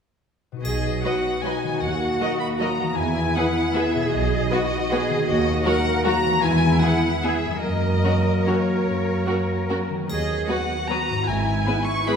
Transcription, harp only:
0.52 1.83 B2 soft
0.52 1.67 D#4 soft
0.56 1.72 F#4 soft
0.56 1.81 B4 soft
1.64 2.90 D#3 soft
1.69 2.92 D#4 soft
1.73 2.95 F#4 soft
1.78 2.97 A#4 soft
2.80 4.06 E3 soft
2.84 3.98 B3 soft
2.88 4.10 E4 soft
2.93 4.13 G#4 soft
3.95 5.21 B2 soft
3.99 5.23 B3 soft
4.03 5.18 D#4 soft
4.08 5.22 F#4 soft
5.10 6.36 D#3 soft
5.15 6.38 A#3 soft
5.19 6.40 D#4 soft
5.24 6.42 F#4 soft
6.25 7.56 E3 soft
6.30 7.58 G#3 soft
6.34 7.61 B3 soft
6.39 7.63 G#4 soft
7.46 10.01 F#2 soft
7.50 11.22 F#3 soft
7.54 9.98 F#4 soft
7.59 10.08 A#4 soft
9.90 11.19 D#3 soft
9.95 11.13 B3 soft
9.99 11.23 F#4 soft
10.04 11.22 B4 soft
11.10 12.16 G#2 soft
11.14 12.16 B3 soft
11.18 12.16 E4 soft
11.23 12.16 B4 soft

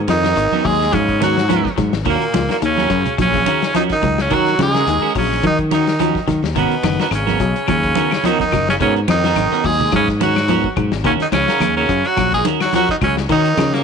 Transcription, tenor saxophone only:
0.10 0.68 D#4 loud
0.66 0.96 G#4 loud
0.94 1.22 C#4 loud
1.23 1.75 F#4 medium
2.09 2.48 A#3 loud
2.52 2.57 A#3 medium
2.65 3.16 C#4 loud
3.22 3.72 C#4 loud
3.76 3.83 D#4 loud
3.92 4.23 D#4 loud
4.21 4.35 C#4 medium
4.34 4.60 F#4 loud
4.62 5.13 G#4 loud
5.18 5.43 C#4 medium
5.47 5.58 D#4 loud
5.74 6.25 D#4 loud
6.58 6.97 B3 medium
7.02 7.07 B3 medium
7.15 7.65 C#4 medium
7.69 8.27 C#4 loud
8.25 8.40 D#4 loud
8.41 8.66 D#4 loud
8.70 8.75 C#4 medium
8.82 8.94 C#4 loud
9.10 9.68 D#4 loud
9.66 9.93 G#4 loud
9.96 10.08 C#4 loud
10.23 10.74 F#4 loud
11.06 11.13 C#4 loud
11.22 11.27 D#4 medium
11.34 11.74 C#4 loud
11.76 12.09 C#4 medium
12.07 12.33 F#4 loud
12.34 12.46 G#4 loud
12.62 12.73 F#4 loud
12.75 12.89 F#4 loud
12.91 12.96 D#4 medium
13.04 13.16 C#4 loud
13.32 13.75 D#4 loud
13.74 13.84 A#3 medium

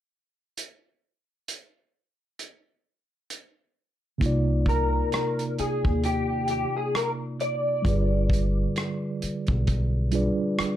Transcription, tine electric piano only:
4.18 7.79 C3 medium
4.18 7.80 A#3 medium
4.18 7.81 D#4 medium
4.24 7.82 F4 medium
4.24 7.83 D5 medium
7.82 10.07 D3 soft
7.82 10.07 G3 medium
7.82 10.08 F4 medium
7.87 10.09 G#4 medium
7.87 10.10 B4 medium
7.87 10.11 D5 medium
10.11 10.77 G3 medium
10.11 10.77 D4 medium
10.11 10.77 F4 medium
10.11 10.77 G#4 medium
10.11 10.77 B4 medium
10.15 10.77 D5 medium

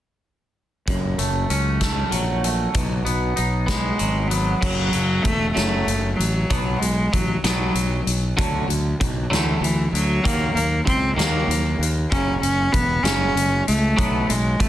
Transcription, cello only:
3.67 4.29 G#3 medium
4.28 4.58 F#3 medium
4.59 5.24 F#3 loud
5.23 5.52 A3 loud
5.53 6.13 A3 loud
6.15 6.80 F#3 medium
6.79 7.14 G#3 medium
7.12 7.43 F#3 medium
7.45 8.10 F#3 medium
9.31 9.60 E3 medium
9.61 9.90 E3 medium
9.94 10.25 F#3 medium
10.23 10.54 A#3 loud
10.55 10.84 A#3 medium
10.86 11.15 C4 loud
11.17 11.83 A#3 loud
12.11 12.40 C#4 loud
12.41 12.74 C#4 loud
12.72 13.05 B3 loud
13.04 13.66 C#4 loud
13.68 14.31 A3 loud
14.29 14.62 G#3 medium
14.60 14.69 A3 loud

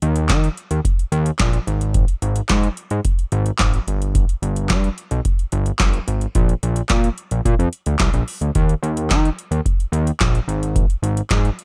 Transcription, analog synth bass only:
0.02 0.31 D#2 loud
0.30 0.49 D#3 loud
0.71 0.80 D#2 medium
1.12 1.31 D#2 loud
1.40 1.59 A#1 medium
1.67 2.05 G#1 medium
2.22 2.41 G#1 loud
2.50 2.69 G#2 loud
2.91 3.01 G#2 medium
3.32 3.51 G#1 loud
3.60 3.79 G#1 medium
3.87 4.25 G1 medium
4.42 4.72 G1 loud
4.70 4.89 G2 medium
5.11 5.21 B1 medium
5.52 5.72 G1 loud
5.80 5.99 G1 loud
6.08 6.27 G#1 medium
6.35 6.54 A#1 loud
6.63 6.82 A#1 loud
6.90 7.09 A#2 medium
7.31 7.41 A#1 medium
7.45 7.55 A#2 loud
7.59 7.69 F2 medium
7.87 7.96 D2 medium
8.00 8.10 C2 loud
8.14 8.23 A#1 medium
8.41 8.51 D2 medium
8.55 8.74 D#2 loud
8.83 9.12 D#2 loud
9.11 9.30 D#3 loud
9.51 9.61 D#2 medium
9.92 10.11 D#2 loud
10.21 10.40 A#1 loud
10.48 10.86 G#1 loud
11.03 11.22 G#1 loud
11.31 11.50 G#2 loud

